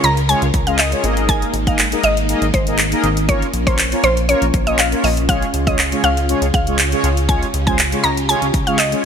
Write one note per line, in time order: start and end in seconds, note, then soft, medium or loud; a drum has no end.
0.00 0.35 C#2 loud
0.00 1.00 C#3 medium
0.00 1.00 C#4 medium
0.00 1.00 F4 medium
0.00 1.02 A#4 medium
0.00 closed hi-hat medium
0.04 0.13 A#5 medium
0.17 closed hi-hat medium
0.29 0.46 G#3 medium
0.29 0.46 C#4 medium
0.29 0.46 F4 medium
0.29 0.46 G#4 medium
0.29 0.46 C#5 medium
0.29 0.38 G#5 medium
0.29 closed hi-hat medium
0.42 0.52 C#2 medium
0.42 closed hi-hat medium
0.54 0.95 C#2 loud
0.54 kick loud
0.54 closed hi-hat medium
0.67 0.77 G#3 medium
0.67 0.78 C#4 medium
0.67 0.78 F4 medium
0.67 0.78 G#4 medium
0.67 0.78 D#5 medium
0.67 0.75 F5 medium
0.67 closed hi-hat medium
0.79 1.15 D#5 medium
0.79 clap loud
0.79 closed hi-hat loud
0.92 1.04 G#3 medium
0.92 1.04 C#4 medium
0.92 1.04 F4 medium
0.92 1.02 G#4 medium
0.92 1.04 C#5 medium
0.92 closed hi-hat medium
1.03 1.45 G#1 loud
1.03 3.27 G#3 medium
1.03 1.54 A#3 medium
1.03 5.25 A#3 medium
1.03 1.54 D#4 medium
1.03 3.27 D#4 medium
1.03 1.54 G#4 medium
1.03 1.54 A#4 medium
1.03 1.54 D#5 medium
1.03 closed hi-hat medium
1.17 closed hi-hat medium
1.29 1.45 G#5 loud
1.29 kick loud
1.29 closed hi-hat loud
1.42 closed hi-hat medium
1.54 1.95 G#1 loud
1.54 closed hi-hat medium
1.67 1.77 A#3 medium
1.67 1.78 D#4 medium
1.67 1.78 G#4 medium
1.67 1.78 A#4 medium
1.67 1.78 D#5 medium
1.67 1.75 F5 medium
1.67 kick medium
1.67 closed hi-hat medium
1.79 clap loud
1.79 closed hi-hat medium
1.92 2.08 A#3 medium
1.92 2.08 D#4 medium
1.92 2.08 G#4 medium
1.92 2.09 A#4 medium
1.92 2.09 D#5 medium
1.92 closed hi-hat medium
2.04 2.35 G#1 loud
2.04 2.40 D#5 medium
2.04 closed hi-hat medium
2.17 closed hi-hat medium
2.28 2.46 A#3 medium
2.28 2.46 D#4 medium
2.28 2.46 G#4 medium
2.28 2.46 A#4 medium
2.28 2.46 D#5 medium
2.28 closed hi-hat medium
2.42 2.52 G#1 medium
2.42 closed hi-hat medium
2.54 2.63 C5 medium
2.54 kick medium
2.54 closed hi-hat medium
2.67 2.78 A#3 medium
2.67 2.78 D#4 medium
2.67 2.78 G#4 medium
2.67 2.78 A#4 medium
2.67 2.78 D#5 medium
2.67 closed hi-hat medium
2.78 clap loud
2.78 closed hi-hat loud
2.92 3.08 A#3 medium
2.92 3.08 D#4 medium
2.92 3.08 G#4 medium
2.92 3.09 A#4 medium
2.92 3.09 D#5 loud
2.92 closed hi-hat medium
3.04 3.45 G#1 loud
3.04 closed hi-hat medium
3.17 closed hi-hat medium
3.29 3.46 A#3 medium
3.29 9.00 C#4 medium
3.29 3.46 C#4 medium
3.29 9.00 F4 loud
3.29 3.46 F4 medium
3.29 3.46 A#4 medium
3.29 3.38 C#5 loud
3.29 3.46 C#5 medium
3.29 kick loud
3.29 closed hi-hat loud
3.42 closed hi-hat soft
3.54 3.94 A#1 medium
3.54 closed hi-hat medium
3.67 3.78 A#3 medium
3.67 3.78 C#4 medium
3.67 3.78 F4 medium
3.67 3.78 A#4 medium
3.67 3.83 C5 medium
3.67 3.78 C#5 medium
3.67 kick medium
3.67 closed hi-hat medium
3.79 clap loud
3.79 closed hi-hat medium
3.92 4.08 A#3 medium
3.92 4.08 C#4 medium
3.92 4.08 F4 medium
3.92 4.09 A#4 medium
3.92 4.09 C#5 medium
3.92 closed hi-hat medium
4.04 4.35 A#1 loud
4.04 4.13 C5 medium
4.04 closed hi-hat medium
4.17 closed hi-hat medium
4.28 4.46 A#3 medium
4.28 4.46 C#4 medium
4.28 4.46 F4 medium
4.28 4.46 A#4 medium
4.28 4.38 C#5 medium
4.28 4.46 C#5 medium
4.28 closed hi-hat medium
4.42 4.52 A#1 medium
4.42 closed hi-hat medium
4.54 kick loud
4.54 closed hi-hat medium
4.67 4.78 A#3 medium
4.67 4.78 C#4 medium
4.67 4.78 F4 medium
4.67 4.78 A#4 medium
4.67 4.78 C#5 medium
4.67 4.75 D#5 medium
4.67 closed hi-hat medium
4.79 4.88 F5 medium
4.79 clap loud
4.79 closed hi-hat loud
4.92 5.08 A#3 medium
4.92 5.08 C#4 medium
4.92 5.08 F4 medium
4.92 5.09 A#4 medium
4.92 5.09 C#5 medium
4.92 closed hi-hat medium
5.04 5.45 A#1 loud
5.04 5.13 D#5 medium
5.04 open hi-hat medium
5.17 closed hi-hat medium
5.28 9.00 C#3 medium
5.28 5.46 G#3 medium
5.28 5.46 C#4 medium
5.28 5.46 F4 medium
5.28 5.46 G#4 medium
5.28 7.27 G#4 medium
5.28 5.46 C#5 medium
5.28 5.45 F5 loud
5.28 kick loud
5.28 closed hi-hat loud
5.42 closed hi-hat soft
5.54 5.95 C#2 medium
5.54 closed hi-hat medium
5.67 5.77 G#3 medium
5.67 5.78 C#4 medium
5.67 5.78 F4 medium
5.67 5.78 G#4 medium
5.67 5.78 C#5 medium
5.67 5.75 D#5 medium
5.67 kick loud
5.67 closed hi-hat medium
5.79 clap loud
5.79 closed hi-hat medium
5.92 6.08 G#3 medium
5.92 6.08 C#4 medium
5.92 6.09 F4 medium
5.92 6.09 G#4 medium
5.92 6.09 C#5 medium
5.92 closed hi-hat medium
6.04 6.35 C#2 loud
6.04 6.40 F5 medium
6.04 closed hi-hat medium
6.17 closed hi-hat medium
6.29 6.46 G#3 medium
6.29 6.46 C#4 medium
6.29 6.46 F4 medium
6.29 6.46 G#4 medium
6.29 6.46 C#5 medium
6.29 closed hi-hat medium
6.42 6.52 C#2 medium
6.42 closed hi-hat medium
6.54 6.95 C#2 loud
6.54 6.63 F5 medium
6.54 kick loud
6.54 closed hi-hat medium
6.67 6.78 G#3 medium
6.67 6.78 C#4 medium
6.67 6.78 F4 medium
6.67 6.78 G#4 medium
6.67 6.78 C#5 medium
6.67 closed hi-hat medium
6.79 clap loud
6.79 closed hi-hat loud
6.92 7.08 G#3 medium
6.92 7.09 C#4 medium
6.92 7.09 F4 medium
6.92 7.09 G#4 medium
6.92 7.09 C#5 loud
6.92 closed hi-hat medium
7.04 7.45 C#2 loud
7.04 closed hi-hat medium
7.17 closed hi-hat medium
7.29 7.46 G#3 medium
7.29 7.46 C#4 medium
7.29 7.46 F4 medium
7.29 9.02 G4 medium
7.29 7.46 G#4 medium
7.29 7.47 C#5 medium
7.29 7.38 G#5 loud
7.29 kick loud
7.29 closed hi-hat loud
7.43 closed hi-hat soft
7.54 7.95 C#2 loud
7.54 closed hi-hat medium
7.67 7.78 G#3 medium
7.67 7.78 C#4 medium
7.67 7.78 F4 medium
7.67 7.78 G#4 medium
7.67 7.78 C5 medium
7.67 7.83 G#5 medium
7.67 kick medium
7.67 closed hi-hat medium
7.79 clap loud
7.79 closed hi-hat medium
7.92 8.09 G#3 medium
7.92 8.09 C#4 medium
7.92 8.09 F4 medium
7.92 8.09 G#4 medium
7.92 8.09 C#5 medium
7.92 closed hi-hat medium
8.04 8.35 C#2 loud
8.04 8.12 A#5 medium
8.04 closed hi-hat medium
8.17 closed hi-hat medium
8.29 8.46 G#3 medium
8.29 8.46 C#4 medium
8.29 8.46 F4 medium
8.29 8.46 G#4 medium
8.29 8.47 C#5 medium
8.29 8.38 G#5 medium
8.29 closed hi-hat medium
8.42 8.52 C#2 medium
8.42 closed hi-hat medium
8.54 8.95 C#2 medium
8.54 kick loud
8.54 closed hi-hat medium
8.67 8.78 G#3 medium
8.67 8.78 C#4 medium
8.67 8.78 F4 medium
8.67 8.78 G#4 medium
8.67 8.78 C#5 medium
8.67 8.75 F5 medium
8.67 closed hi-hat medium
8.78 9.05 D#5 medium
8.78 clap loud
8.78 closed hi-hat loud
8.92 9.02 G#3 medium
8.92 9.04 C#4 medium
8.92 9.04 F4 medium
8.92 9.03 G#4 medium
8.92 9.04 C#5 medium
8.92 closed hi-hat medium